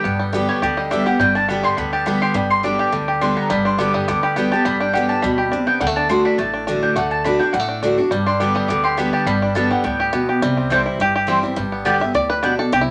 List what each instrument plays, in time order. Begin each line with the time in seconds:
Already playing: five-string banjo G3 D4 G4, mandolin G5
0.04 upright bass G1, steel-string acoustic guitar G2, five-string banjo B3
0.19 five-string banjo G3
0.33 steel-string acoustic guitar D3 G3 B3 G4, five-string banjo B3
0.49 five-string banjo G3, mandolin C#5
0.62 upright bass D2, steel-string acoustic guitar D3, five-string banjo G4, mandolin D5
0.77 five-string banjo G3, mandolin D#5
0.91 steel-string acoustic guitar D3 G3 B3 G4, five-string banjo D4, mandolin E5
1.06 steel-string acoustic guitar B3 G4, five-string banjo G4, mandolin F#5
1.19 upright bass G1, steel-string acoustic guitar G2, five-string banjo G3, mandolin G5
1.35 five-string banjo D4, mandolin A5
1.48 steel-string acoustic guitar D3 G3 B3 G4, five-string banjo B3, mandolin B5
1.63 five-string banjo G3, mandolin C6
1.77 upright bass D2, steel-string acoustic guitar D3, five-string banjo B3, mandolin B5
1.93 five-string banjo G4, mandolin A5
2.06 steel-string acoustic guitar D3 G3 B3 G4, five-string banjo B3, mandolin B5
2.22 five-string banjo G4, mandolin C6
2.34 upright bass G1, steel-string acoustic guitar G2, five-string banjo G3, mandolin B5
2.50 mandolin C6
2.63 steel-string acoustic guitar D3 G3 B3 G4, five-string banjo D4, mandolin D6
2.79 five-string banjo G4, mandolin D6
2.92 upright bass D2, steel-string acoustic guitar D3, five-string banjo G3
3.08 five-string banjo G4
3.21 steel-string acoustic guitar D3 G3 B3 G4, five-string banjo D4, mandolin C6
3.37 five-string banjo B3, mandolin A#5
3.50 upright bass G1, steel-string acoustic guitar G2, five-string banjo G3, mandolin B5
3.65 five-string banjo D4, mandolin C6
3.78 steel-string acoustic guitar D3 G3 B3 G4, five-string banjo B3, mandolin D6
3.94 five-string banjo G3, mandolin D#6
4.08 upright bass D2, steel-string acoustic guitar D3, five-string banjo B3, mandolin D6
4.23 five-string banjo G4, mandolin B5
4.36 steel-string acoustic guitar D3 G3 B3 G4, five-string banjo B3, mandolin G5
4.52 steel-string acoustic guitar B3 G4, five-string banjo G4, mandolin A5
4.65 upright bass G1, steel-string acoustic guitar G2, five-string banjo G3, mandolin B5
4.80 five-string banjo D4, mandolin G5
4.93 steel-string acoustic guitar D3 G3 B3 G4, five-string banjo G4, mandolin F#5
5.09 five-string banjo D4, mandolin A5
5.22 upright bass D2, steel-string acoustic guitar B2, five-string banjo G3, mandolin B5
5.38 five-string banjo G4
5.52 steel-string acoustic guitar C3, five-string banjo D4
5.67 five-string banjo B3, mandolin G5
5.80 upright bass D2, steel-string acoustic guitar D3, five-string banjo G3, mandolin F#5
5.87 five-string banjo A3
5.96 five-string banjo D4, mandolin A5
6.09 steel-string acoustic guitar D3 A3 D4 F#4, five-string banjo D4, mandolin C6
6.25 five-string banjo D4, mandolin B5
6.38 upright bass A1, steel-string acoustic guitar A2, five-string banjo A3, mandolin A5
6.54 five-string banjo D4
6.67 steel-string acoustic guitar D3 A3 D4 F#4, five-string banjo D4
6.82 five-string banjo D4, mandolin G5
6.96 upright bass D2, steel-string acoustic guitar D3, five-string banjo A3, mandolin F#5
7.11 mandolin A5
7.24 steel-string acoustic guitar D3 A3 D4 F#4, five-string banjo D4, mandolin B5
7.39 five-string banjo D4, steel-string acoustic guitar D4 F#4, mandolin G5
7.53 upright bass A1, steel-string acoustic guitar A2, five-string banjo G3, mandolin F#5
7.59 five-string banjo A3
7.68 five-string banjo D4
7.83 steel-string acoustic guitar D3 A3 D4 F#4, five-string banjo D4
7.98 five-string banjo D4, steel-string acoustic guitar D4 F#4
8.11 upright bass G1, steel-string acoustic guitar G2, five-string banjo G3
8.26 five-string banjo D4, mandolin C6
8.40 steel-string acoustic guitar D3 G3 B3 G4, five-string banjo B3, mandolin D6
8.55 five-string banjo G3, mandolin D#6
8.68 upright bass D2, steel-string acoustic guitar D3, five-string banjo B3, mandolin D6
8.84 five-string banjo G4, mandolin C6
8.97 steel-string acoustic guitar D3 G3 B3 G4, five-string banjo B3, mandolin B5
9.13 five-string banjo G4, mandolin A5
9.26 upright bass G1, steel-string acoustic guitar G2, five-string banjo G3, mandolin B5
9.42 five-string banjo D4
9.55 steel-string acoustic guitar D3 G3 B3 G4, five-string banjo B3, mandolin A5
9.71 five-string banjo G3, mandolin F#5
9.84 upright bass D2, steel-string acoustic guitar A2, five-string banjo B3, mandolin G5
10.00 five-string banjo G4
10.13 steel-string acoustic guitar B2, five-string banjo B3
10.29 five-string banjo G4
10.42 upright bass C2, steel-string acoustic guitar C3, five-string banjo G3
10.57 five-string banjo C4
10.70 steel-string acoustic guitar E3 G3 C4 E4, mandolin C4 E4 C5 G5, five-string banjo A4
10.86 five-string banjo E4
10.99 upright bass G1, steel-string acoustic guitar G2, five-string banjo G4
11.16 five-string banjo G4
11.27 steel-string acoustic guitar E3 G3 C4 E4, mandolin C4 E4 C5 G5, five-string banjo C4
11.43 five-string banjo G3, steel-string acoustic guitar C4 E4
11.56 upright bass G1, steel-string acoustic guitar G2, five-string banjo G3
11.72 five-string banjo B3
11.85 steel-string acoustic guitar D3 G3 B3 G4, mandolin B3 G4 D5 G5, five-string banjo G4
12.00 steel-string acoustic guitar B3 G4, five-string banjo E5
12.14 upright bass D2, steel-string acoustic guitar A2, five-string banjo D5
12.30 five-string banjo B4
12.43 steel-string acoustic guitar B2, mandolin B3 G4 D5 G5, five-string banjo D4
12.59 five-string banjo A4
12.72 upright bass C2, steel-string acoustic guitar C3, five-string banjo G4
12.81 five-string banjo E4